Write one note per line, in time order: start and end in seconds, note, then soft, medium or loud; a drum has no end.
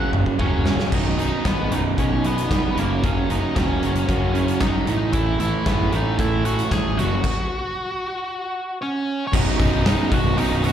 0.00 0.38 F#2 loud
0.00 0.39 C#3 loud
0.00 0.39 F#3 loud
0.00 0.10 F#5 medium
0.13 0.24 F#1 medium
0.13 mid tom medium
0.26 kick medium
0.39 0.50 F#1 loud
0.39 0.64 F#2 medium
0.39 0.65 C#3 medium
0.39 0.65 F#3 medium
0.39 0.89 C#4 medium
0.39 0.89 C#5 medium
0.39 kick loud
0.39 mid tom medium
0.53 0.64 F#1 loud
0.66 0.87 C#1 medium
0.66 0.91 F#2 medium
0.66 0.91 C#3 medium
0.66 0.91 F#3 medium
0.66 snare loud
0.79 snare medium
0.92 1.14 B0 loud
0.92 1.18 B1 medium
0.92 2.24 B1 medium
0.92 1.18 F#2 medium
0.92 1.19 B2 medium
0.92 1.17 D#4 medium
0.92 1.18 D#5 medium
0.92 kick loud
0.92 crash loud
1.18 1.30 B0 medium
1.18 1.43 B1 medium
1.18 1.43 F#2 medium
1.18 2.51 B2 medium
1.18 1.44 B2 medium
1.18 1.43 D#4 medium
1.18 1.46 D#5 medium
1.18 closed hi-hat medium
1.44 1.66 G#1 medium
1.44 1.70 B1 medium
1.44 1.71 F#2 medium
1.44 1.71 B2 medium
1.44 1.70 B3 medium
1.44 1.97 D#4 medium
1.44 1.74 B4 medium
1.44 kick loud
1.44 snare loud
1.44 closed hi-hat medium
1.71 1.93 B0 medium
1.71 1.96 B1 loud
1.71 1.98 F#2 medium
1.71 1.98 B2 loud
1.71 2.22 F#3 medium
1.71 1.79 D#4 medium
1.71 1.79 D#5 medium
1.71 closed hi-hat medium
1.98 2.22 B1 medium
1.98 2.40 B1 medium
1.98 2.23 F#2 medium
1.98 2.24 B2 medium
1.98 2.23 C#4 medium
1.98 2.77 D#4 medium
1.98 2.23 C#5 medium
1.98 kick loud
1.98 closed hi-hat medium
2.23 2.48 B1 medium
2.23 2.49 F#2 medium
2.23 2.50 B2 medium
2.23 2.77 F#3 medium
2.23 2.74 B3 medium
2.23 2.80 B4 medium
2.23 closed hi-hat medium
2.38 closed hi-hat medium
2.50 2.61 F1 medium
2.50 2.75 B1 medium
2.50 2.75 F#2 medium
2.50 2.76 B2 medium
2.50 kick loud
2.50 snare loud
2.50 closed hi-hat medium
2.76 3.19 F#1 medium
2.76 3.02 F#2 medium
2.76 3.03 C#3 medium
2.76 3.03 F#3 medium
2.76 3.03 A#3 medium
2.76 3.05 A#4 medium
2.76 closed hi-hat medium
3.03 3.28 F#2 medium
3.03 4.35 F#2 medium
3.03 3.29 C#3 medium
3.03 3.29 F#3 loud
3.03 3.29 C#4 medium
3.03 3.29 C#5 loud
3.03 kick loud
3.03 closed hi-hat medium
3.29 3.41 F#1 loud
3.29 3.54 F#2 medium
3.29 3.55 C#3 medium
3.29 3.55 F#3 loud
3.29 4.62 A#3 medium
3.29 3.55 D#4 medium
3.29 3.55 D#5 medium
3.29 closed hi-hat medium
3.55 3.77 D#1 medium
3.55 3.81 F#2 medium
3.55 3.82 C#3 loud
3.55 3.83 F#3 loud
3.55 4.58 C#4 medium
3.55 4.08 F#4 medium
3.55 4.65 C#5 medium
3.55 kick loud
3.55 snare loud
3.55 closed hi-hat medium
3.82 4.04 F#1 medium
3.82 4.07 F#2 loud
3.82 4.08 C#3 loud
3.82 4.09 F#3 loud
3.82 4.35 C#4 medium
3.82 closed hi-hat medium
3.95 closed hi-hat medium
4.08 4.33 F#2 medium
4.08 4.51 F#2 medium
4.08 4.34 C#3 medium
4.08 4.35 F#3 loud
4.08 4.88 F#4 medium
4.08 kick loud
4.08 closed hi-hat medium
4.35 4.61 F#2 medium
4.35 4.61 C#3 medium
4.35 4.62 F#3 medium
4.35 4.88 C#4 medium
4.35 closed hi-hat medium
4.48 closed hi-hat medium
4.60 4.72 F#1 medium
4.60 4.87 F#2 medium
4.60 4.87 C#3 loud
4.60 4.88 F#3 medium
4.60 4.87 F#3 medium
4.60 5.11 D#4 medium
4.60 5.13 D#5 medium
4.60 kick loud
4.60 snare loud
4.60 closed hi-hat medium
4.87 5.30 A1 medium
4.87 5.13 A2 medium
4.87 5.15 A2 medium
4.87 5.13 E3 loud
4.87 5.14 A3 medium
4.87 closed hi-hat medium
5.13 5.39 A2 medium
5.13 5.40 E3 medium
5.13 5.40 A3 loud
5.13 5.39 E4 medium
5.13 5.38 E5 loud
5.13 kick loud
5.13 closed hi-hat medium
5.40 5.51 A1 medium
5.40 5.65 A2 medium
5.40 5.65 E3 medium
5.40 5.66 A3 medium
5.40 5.65 E4 medium
5.40 5.65 E5 medium
5.40 closed hi-hat medium
5.66 5.88 F#1 medium
5.66 5.90 A2 loud
5.66 5.91 E3 medium
5.66 5.92 A3 loud
5.66 5.92 B3 medium
5.66 5.94 B4 loud
5.66 kick loud
5.66 snare loud
5.66 closed hi-hat medium
5.92 6.13 A1 medium
5.92 6.17 A2 loud
5.92 6.18 E3 medium
5.92 6.19 A3 loud
5.92 6.17 D#4 medium
5.92 6.19 D#5 medium
5.92 closed hi-hat medium
6.18 6.43 A2 medium
6.18 6.61 A2 loud
6.18 6.44 E3 loud
6.18 6.44 A3 medium
6.18 6.44 E4 medium
6.18 6.45 E5 loud
6.18 kick loud
6.18 closed hi-hat medium
6.44 6.69 A2 medium
6.44 6.70 E3 medium
6.44 6.70 A3 loud
6.44 6.70 F#4 medium
6.44 6.70 F#5 medium
6.44 closed hi-hat medium
6.59 closed hi-hat medium
6.70 6.82 G#1 loud
6.70 6.96 A2 medium
6.70 6.96 E3 medium
6.70 6.97 A3 loud
6.70 6.97 G#4 medium
6.70 6.99 G#5 loud
6.70 kick loud
6.70 snare loud
6.70 closed hi-hat medium
6.97 7.18 F#1 loud
6.97 7.22 F#2 loud
6.97 7.23 C#3 loud
6.97 7.23 F#3 medium
6.97 8.78 F#4 medium
6.97 8.77 F#5 medium
6.97 snare soft
6.97 closed hi-hat medium
7.24 kick loud
7.24 crash loud
8.82 9.24 C#4 medium
8.82 9.24 C#5 medium
9.27 9.34 C#5 medium
9.32 9.44 B0 loud
9.32 9.57 B1 medium
9.32 9.58 F#2 loud
9.32 9.59 B2 loud
9.32 10.37 F#3 medium
9.32 9.83 D#4 medium
9.32 9.86 D#5 medium
9.32 kick loud
9.32 crash loud
9.59 9.70 B0 medium
9.59 9.83 B1 medium
9.59 9.84 F#2 medium
9.59 9.85 B2 loud
9.59 kick loud
9.59 open hi-hat medium
9.73 9.94 B0 medium
9.84 10.10 B1 loud
9.84 10.10 F#2 loud
9.84 10.11 B2 loud
9.84 10.11 D#4 medium
9.84 10.13 D#5 loud
9.84 snare loud
9.84 open hi-hat medium
10.11 10.33 B0 medium
10.11 10.35 B1 medium
10.11 10.37 F#2 loud
10.11 10.37 B2 loud
10.11 10.37 F#4 medium
10.11 10.39 F#5 loud
10.11 kick loud
10.11 open hi-hat medium
10.36 10.62 B1 medium
10.36 10.63 F#2 loud
10.36 10.64 B2 loud
10.36 10.72 F#3 medium
10.36 10.63 D#4 medium
10.36 10.65 D#5 medium
10.36 open hi-hat medium
10.52 10.72 B0 medium
10.63 10.72 B1 medium
10.63 10.72 F#2 medium
10.63 10.72 B2 medium
10.63 10.72 F#4 medium
10.63 10.72 F#5 medium
10.63 open hi-hat medium